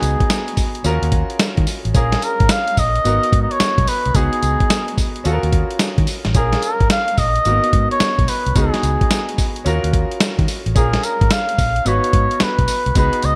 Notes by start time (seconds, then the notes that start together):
Already playing: B3 D#4 F#4 G#4
0.02 C#2, closed hi-hat, tambourine
0.20 kick, closed hi-hat
0.30 snare, closed hi-hat, tambourine
0.48 closed hi-hat
0.57 kick, open hi-hat, tambourine
0.75 closed hi-hat
0.84 D#2 C#4 F4 F#4 A#4, closed hi-hat, tambourine
1.02 D#2, closed hi-hat
1.12 kick, closed hi-hat
1.30 closed hi-hat
1.39 snare, closed hi-hat, tambourine
1.57 D#3, kick, closed hi-hat
1.67 open hi-hat, tambourine
1.85 A1, closed hi-hat
1.94 A#1 C#4 F4 G#4 A#4, kick, closed hi-hat, tambourine
2.12 snare, closed hi-hat
2.22 A#4, closed hi-hat, tambourine
2.40 G#1, kick, closed hi-hat
2.49 F5, snare, closed hi-hat, tambourine
2.68 closed hi-hat
2.77 A#1 D#5, kick, open hi-hat, tambourine
2.96 closed hi-hat
3.04 G#1 B3 D#4 F#4 A#4, closed hi-hat, tambourine
3.23 closed hi-hat
3.33 G#2, kick, closed hi-hat
3.42 D#5
3.51 C#5, closed hi-hat
3.60 muted fingered electric bass stroke, snare, closed hi-hat, tambourine
3.78 B1, kick, closed hi-hat
3.87 B4, open hi-hat, tambourine
4.06 C2, closed hi-hat
4.14 C#2 B3 D#4 F#4 G#4, kick, closed hi-hat, tambourine
4.33 closed hi-hat
4.43 C#2, closed hi-hat, tambourine
4.60 kick, closed hi-hat
4.70 snare, closed hi-hat, tambourine
4.88 closed hi-hat
4.98 kick, open hi-hat, tambourine
5.16 closed hi-hat
5.24 D#2 C#4 F4 F#4 A4, closed hi-hat, tambourine
5.33 A#4
5.43 D#2, closed hi-hat
5.52 kick, closed hi-hat
5.71 closed hi-hat
5.79 snare, closed hi-hat, tambourine
5.98 D#3, kick, closed hi-hat
6.07 open hi-hat, tambourine
6.25 A1, snare, closed hi-hat
6.34 A#1 C#4 F4 G#4 A#4, kick, closed hi-hat, tambourine
6.53 snare, closed hi-hat
6.62 A#4, closed hi-hat, tambourine
6.80 G#1, kick, closed hi-hat
6.90 F5, snare, closed hi-hat, tambourine
7.08 closed hi-hat
7.18 A#1 D#5, kick, open hi-hat, tambourine
7.36 closed hi-hat
7.45 G#1 A#3 D#4 F#4 A#4, closed hi-hat, tambourine
7.51 B3
7.64 closed hi-hat
7.73 G#2, kick, closed hi-hat
7.91 C#5, closed hi-hat
8.00 muted fingered electric bass stroke, snare, closed hi-hat, tambourine
8.19 B1, kick, closed hi-hat
8.28 B4, open hi-hat, tambourine
8.46 C2, closed hi-hat
8.55 C#2 B3 D#4 F#4 G#4, kick, closed hi-hat, tambourine
8.74 snare, closed hi-hat
8.83 C#2, closed hi-hat, tambourine
9.01 kick, closed hi-hat
9.11 snare, closed hi-hat, tambourine
9.29 closed hi-hat
9.38 kick, open hi-hat, tambourine
9.56 closed hi-hat
9.65 D#2 C#4 F4 F#4 A#4, closed hi-hat, tambourine
9.84 D#2, closed hi-hat
9.93 kick, closed hi-hat
10.11 closed hi-hat
10.20 snare, closed hi-hat, tambourine
10.39 D#3, kick, closed hi-hat
10.48 open hi-hat, tambourine
10.66 A1, closed hi-hat
10.75 A#1 C#4 F4 G#4 A#4, kick, closed hi-hat, tambourine
10.93 snare, closed hi-hat
11.03 A#4, closed hi-hat, tambourine
11.21 G#1, kick, closed hi-hat
11.30 F5, snare, closed hi-hat, tambourine
11.49 closed hi-hat
11.58 A#1, kick, open hi-hat, tambourine
11.76 closed hi-hat
11.85 G#1 B3 D#4 F#4 B4 C#5, closed hi-hat, tambourine
12.04 closed hi-hat
12.13 G#2, kick, closed hi-hat
12.31 closed hi-hat
12.40 B4, muted fingered electric bass stroke, snare, closed hi-hat, tambourine
12.59 B1, kick, closed hi-hat
12.68 open hi-hat, tambourine
12.86 C2, closed hi-hat
12.95 C#2 B3 D#4 F#4 G#4 B4, kick, closed hi-hat, tambourine
13.13 closed hi-hat
13.22 C#2 D#5, closed hi-hat, tambourine